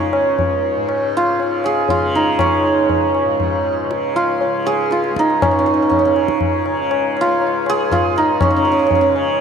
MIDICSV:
0, 0, Header, 1, 4, 480
1, 0, Start_track
1, 0, Tempo, 501253
1, 850, Time_signature, 3, 2, 24, 8
1, 9008, End_track
2, 0, Start_track
2, 0, Title_t, "Santur"
2, 0, Program_c, 0, 15
2, 0, Note_on_c, 0, 61, 47
2, 0, Note_on_c, 0, 63, 73
2, 0, Note_on_c, 0, 65, 66
2, 0, Note_on_c, 0, 68, 86
2, 1115, Note_off_c, 0, 65, 0
2, 1118, Note_on_c, 0, 65, 76
2, 1582, Note_off_c, 0, 68, 0
2, 1586, Note_on_c, 0, 68, 87
2, 1818, Note_off_c, 0, 65, 0
2, 1821, Note_on_c, 0, 65, 75
2, 2059, Note_off_c, 0, 63, 0
2, 2063, Note_on_c, 0, 63, 73
2, 2299, Note_off_c, 0, 61, 0
2, 2303, Note_on_c, 0, 61, 74
2, 3980, Note_off_c, 0, 65, 0
2, 3984, Note_on_c, 0, 65, 80
2, 4464, Note_off_c, 0, 68, 0
2, 4468, Note_on_c, 0, 68, 89
2, 4708, Note_off_c, 0, 65, 0
2, 4711, Note_on_c, 0, 65, 62
2, 4967, Note_off_c, 0, 63, 0
2, 4971, Note_on_c, 0, 63, 75
2, 5196, Note_off_c, 0, 61, 0
2, 5200, Note_on_c, 0, 61, 73
2, 5274, Note_off_c, 0, 61, 0
2, 5278, Note_on_c, 0, 61, 49
2, 5346, Note_off_c, 0, 61, 0
2, 5350, Note_on_c, 0, 61, 52
2, 5417, Note_off_c, 0, 61, 0
2, 5421, Note_on_c, 0, 61, 46
2, 5492, Note_off_c, 0, 61, 0
2, 5496, Note_on_c, 0, 61, 39
2, 5572, Note_off_c, 0, 61, 0
2, 5576, Note_on_c, 0, 61, 38
2, 5641, Note_off_c, 0, 61, 0
2, 5645, Note_on_c, 0, 61, 54
2, 5732, Note_off_c, 0, 61, 0
2, 5736, Note_on_c, 0, 61, 47
2, 5792, Note_off_c, 0, 61, 0
2, 5796, Note_on_c, 0, 61, 50
2, 6900, Note_off_c, 0, 65, 0
2, 6904, Note_on_c, 0, 65, 78
2, 7365, Note_off_c, 0, 68, 0
2, 7369, Note_on_c, 0, 68, 101
2, 7584, Note_off_c, 0, 65, 0
2, 7588, Note_on_c, 0, 65, 76
2, 7827, Note_off_c, 0, 63, 0
2, 7830, Note_on_c, 0, 63, 78
2, 8060, Note_off_c, 0, 61, 0
2, 8064, Note_on_c, 0, 61, 74
2, 8140, Note_off_c, 0, 61, 0
2, 8144, Note_on_c, 0, 61, 48
2, 8198, Note_off_c, 0, 61, 0
2, 8202, Note_on_c, 0, 61, 53
2, 8279, Note_off_c, 0, 61, 0
2, 8283, Note_on_c, 0, 61, 42
2, 8343, Note_off_c, 0, 61, 0
2, 8347, Note_on_c, 0, 61, 48
2, 8416, Note_off_c, 0, 61, 0
2, 8420, Note_on_c, 0, 61, 41
2, 8486, Note_off_c, 0, 61, 0
2, 8490, Note_on_c, 0, 61, 49
2, 8570, Note_off_c, 0, 61, 0
2, 8574, Note_on_c, 0, 61, 48
2, 8625, Note_off_c, 0, 61, 0
2, 8629, Note_on_c, 0, 61, 58
2, 9008, Note_off_c, 0, 61, 0
2, 9008, Note_off_c, 0, 63, 0
2, 9008, Note_off_c, 0, 65, 0
2, 9008, Note_off_c, 0, 68, 0
2, 9008, End_track
3, 0, Start_track
3, 0, Title_t, "Tanpura"
3, 0, Program_c, 1, 104
3, 0, Note_on_c, 1, 37, 55
3, 0, Note_on_c, 1, 44, 57
3, 0, Note_on_c, 1, 49, 47
3, 124, Note_off_c, 1, 37, 0
3, 128, Note_on_c, 1, 37, 55
3, 723, Note_off_c, 1, 44, 0
3, 727, Note_on_c, 1, 44, 53
3, 1315, Note_off_c, 1, 49, 0
3, 1315, Note_on_c, 1, 49, 48
3, 1916, Note_off_c, 1, 49, 0
3, 1916, Note_on_c, 1, 49, 66
3, 2480, Note_off_c, 1, 37, 0
3, 2484, Note_on_c, 1, 37, 52
3, 3086, Note_off_c, 1, 44, 0
3, 3090, Note_on_c, 1, 44, 50
3, 3677, Note_off_c, 1, 49, 0
3, 3677, Note_on_c, 1, 49, 53
3, 4278, Note_off_c, 1, 49, 0
3, 4278, Note_on_c, 1, 49, 48
3, 4876, Note_off_c, 1, 37, 0
3, 4880, Note_on_c, 1, 37, 48
3, 5189, Note_off_c, 1, 44, 0
3, 5193, Note_on_c, 1, 44, 47
3, 5778, Note_off_c, 1, 49, 0
3, 5778, Note_on_c, 1, 49, 55
3, 6370, Note_off_c, 1, 49, 0
3, 6370, Note_on_c, 1, 49, 55
3, 6942, Note_off_c, 1, 37, 0
3, 6945, Note_on_c, 1, 37, 54
3, 7553, Note_off_c, 1, 44, 0
3, 7557, Note_on_c, 1, 44, 52
3, 8130, Note_off_c, 1, 49, 0
3, 8130, Note_on_c, 1, 49, 58
3, 8706, Note_off_c, 1, 49, 0
3, 8706, Note_on_c, 1, 49, 57
3, 9008, Note_off_c, 1, 37, 0
3, 9008, Note_off_c, 1, 44, 0
3, 9008, Note_off_c, 1, 49, 0
3, 9008, End_track
4, 0, Start_track
4, 0, Title_t, "Tabla"
4, 125, Note_on_c, 9, 60, 58
4, 221, Note_off_c, 9, 60, 0
4, 370, Note_on_c, 9, 63, 64
4, 370, Note_on_c, 9, 64, 63
4, 466, Note_off_c, 9, 63, 0
4, 466, Note_off_c, 9, 64, 0
4, 850, Note_on_c, 9, 60, 72
4, 946, Note_off_c, 9, 60, 0
4, 1337, Note_on_c, 9, 63, 66
4, 1432, Note_off_c, 9, 63, 0
4, 1572, Note_on_c, 9, 60, 56
4, 1668, Note_off_c, 9, 60, 0
4, 1807, Note_on_c, 9, 63, 68
4, 1807, Note_on_c, 9, 64, 61
4, 1902, Note_off_c, 9, 63, 0
4, 1902, Note_off_c, 9, 64, 0
4, 2289, Note_on_c, 9, 60, 103
4, 2289, Note_on_c, 9, 64, 78
4, 2385, Note_off_c, 9, 60, 0
4, 2385, Note_off_c, 9, 64, 0
4, 2773, Note_on_c, 9, 63, 65
4, 2773, Note_on_c, 9, 64, 64
4, 2869, Note_off_c, 9, 63, 0
4, 2869, Note_off_c, 9, 64, 0
4, 3013, Note_on_c, 9, 60, 56
4, 3109, Note_off_c, 9, 60, 0
4, 3254, Note_on_c, 9, 63, 63
4, 3254, Note_on_c, 9, 64, 64
4, 3350, Note_off_c, 9, 63, 0
4, 3350, Note_off_c, 9, 64, 0
4, 3742, Note_on_c, 9, 62, 81
4, 3837, Note_off_c, 9, 62, 0
4, 3983, Note_on_c, 9, 62, 48
4, 4079, Note_off_c, 9, 62, 0
4, 4221, Note_on_c, 9, 63, 64
4, 4317, Note_off_c, 9, 63, 0
4, 4461, Note_on_c, 9, 60, 50
4, 4557, Note_off_c, 9, 60, 0
4, 4701, Note_on_c, 9, 62, 66
4, 4796, Note_off_c, 9, 62, 0
4, 4825, Note_on_c, 9, 62, 55
4, 4921, Note_off_c, 9, 62, 0
4, 4945, Note_on_c, 9, 37, 61
4, 5041, Note_off_c, 9, 37, 0
4, 5075, Note_on_c, 9, 62, 53
4, 5171, Note_off_c, 9, 62, 0
4, 5192, Note_on_c, 9, 60, 96
4, 5192, Note_on_c, 9, 64, 87
4, 5288, Note_off_c, 9, 60, 0
4, 5288, Note_off_c, 9, 64, 0
4, 5665, Note_on_c, 9, 63, 75
4, 5665, Note_on_c, 9, 64, 64
4, 5761, Note_off_c, 9, 63, 0
4, 5761, Note_off_c, 9, 64, 0
4, 5902, Note_on_c, 9, 60, 58
4, 5998, Note_off_c, 9, 60, 0
4, 6019, Note_on_c, 9, 37, 54
4, 6114, Note_off_c, 9, 37, 0
4, 6136, Note_on_c, 9, 63, 70
4, 6136, Note_on_c, 9, 64, 67
4, 6231, Note_off_c, 9, 63, 0
4, 6231, Note_off_c, 9, 64, 0
4, 6376, Note_on_c, 9, 60, 59
4, 6471, Note_off_c, 9, 60, 0
4, 6618, Note_on_c, 9, 60, 78
4, 6713, Note_off_c, 9, 60, 0
4, 6864, Note_on_c, 9, 60, 51
4, 6959, Note_off_c, 9, 60, 0
4, 7101, Note_on_c, 9, 63, 74
4, 7197, Note_off_c, 9, 63, 0
4, 7338, Note_on_c, 9, 60, 57
4, 7434, Note_off_c, 9, 60, 0
4, 7581, Note_on_c, 9, 60, 77
4, 7581, Note_on_c, 9, 64, 59
4, 7677, Note_off_c, 9, 60, 0
4, 7677, Note_off_c, 9, 64, 0
4, 7817, Note_on_c, 9, 62, 59
4, 7912, Note_off_c, 9, 62, 0
4, 8051, Note_on_c, 9, 60, 96
4, 8051, Note_on_c, 9, 64, 92
4, 8147, Note_off_c, 9, 60, 0
4, 8147, Note_off_c, 9, 64, 0
4, 8531, Note_on_c, 9, 63, 69
4, 8531, Note_on_c, 9, 64, 68
4, 8627, Note_off_c, 9, 63, 0
4, 8627, Note_off_c, 9, 64, 0
4, 8772, Note_on_c, 9, 60, 56
4, 8868, Note_off_c, 9, 60, 0
4, 9008, End_track
0, 0, End_of_file